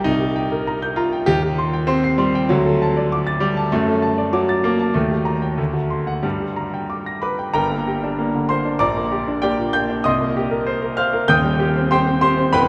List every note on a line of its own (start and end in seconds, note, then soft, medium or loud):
0.04 1.24 C2 medium
0.04 0.97 D#4 medium
0.21 0.46 G4 soft
0.36 0.61 G5 medium
0.52 0.76 A#4 medium
0.67 0.92 A#5 medium
0.82 1.07 G6 medium
0.96 1.27 F4 loud
0.96 1.22 A#5 medium
1.13 1.28 G5 medium
1.26 2.45 D#2 medium
1.26 1.41 G4 loud
1.43 1.67 G4 medium
1.58 1.83 C6 medium
1.73 1.98 G5 medium
1.87 2.18 C4 loud
1.87 2.13 C6 medium
2.04 2.28 C7 medium
2.18 2.49 G3 medium
2.18 2.43 C6 medium
2.35 2.50 G5 medium
2.49 3.69 D2 medium
2.49 3.42 F#3 loud
2.66 2.90 A4 medium
2.82 3.06 A5 medium
2.97 3.21 D5 medium
3.12 3.36 D6 medium
3.27 3.51 A6 medium
3.40 3.72 G3 medium
3.40 3.66 D6 medium
3.57 3.72 A5 medium
3.72 4.92 F#2 medium
3.72 4.34 A3 loud
3.87 4.12 A4 medium
4.02 4.27 A5 medium
4.18 4.43 D5 medium
4.33 4.64 F#3 medium
4.33 4.58 D6 medium
4.49 4.74 A6 medium
4.64 4.95 A#3 medium
4.64 4.90 D6 medium
4.79 4.95 A5 medium
4.94 5.56 D#2 medium
4.94 6.23 A3 medium
5.11 5.36 G4 soft
5.25 5.51 A#5 medium
5.42 5.58 G5 medium
5.58 6.22 D2 medium
5.73 6.00 F#4 soft
5.90 6.17 C6 soft
6.07 6.24 F#5 soft
6.23 7.51 G2 medium
6.23 7.22 G3 medium
6.40 6.67 G4 soft
6.56 6.83 A#5 soft
6.74 7.00 G5 soft
6.90 7.16 D6 soft
7.06 7.33 A#6 soft
7.22 7.53 B4 soft
7.22 7.55 B5 medium
7.22 7.49 D6 soft
7.39 7.53 G5 soft
7.53 8.75 G1 medium
7.53 8.76 G2 medium
7.53 8.45 A#4 medium
7.53 8.45 G5 medium
7.53 8.48 A#5 medium
7.72 7.97 A#3 soft
7.87 8.12 G4 medium
8.04 8.28 D4 medium
8.19 8.43 A#3 medium
8.35 8.59 D3 soft
8.49 8.74 A#3 soft
8.49 8.78 C5 medium
8.49 8.80 C6 medium
8.65 8.80 D4 medium
8.79 10.01 A#1 medium
8.79 9.39 D5 medium
8.79 9.39 A#5 medium
8.79 9.42 D6 loud
8.96 9.21 A#3 medium
9.12 9.37 G4 medium
9.28 9.52 D4 medium
9.42 9.68 A#3 medium
9.42 9.72 G4 medium
9.42 9.72 D5 medium
9.42 9.72 G5 medium
9.58 9.83 A#2 soft
9.73 9.99 A#3 medium
9.73 10.03 G5 medium
9.73 10.05 G6 medium
9.89 10.05 D4 medium
10.04 11.25 C2 medium
10.04 10.94 D#5 medium
10.04 10.94 C6 medium
10.04 10.97 D#6 loud
10.21 10.45 A#3 medium
10.37 10.61 G4 medium
10.51 10.76 A#4 medium
10.67 10.91 C5 medium
10.82 11.07 A#4 medium
10.97 11.23 C5 medium
10.97 11.27 F5 medium
10.97 11.28 F6 medium
11.13 11.29 A#4 medium
11.28 12.48 D#1 medium
11.28 12.49 D#2 medium
11.28 11.87 G5 medium
11.28 11.88 D#6 medium
11.28 11.91 G6 loud
11.44 11.69 G3 medium
11.60 11.85 G4 medium
11.76 12.00 C4 medium
11.91 12.16 G4 medium
11.91 12.20 C5 medium
11.91 12.20 G5 medium
11.91 12.20 C6 loud
12.06 12.31 C4 medium
12.21 12.46 G4 medium
12.21 12.51 C5 medium
12.21 12.52 C6 loud
12.37 12.53 C4 medium
12.52 12.68 E1 medium
12.52 12.68 E2 medium
12.52 12.68 B4 medium
12.52 12.68 G5 medium
12.52 12.68 B5 loud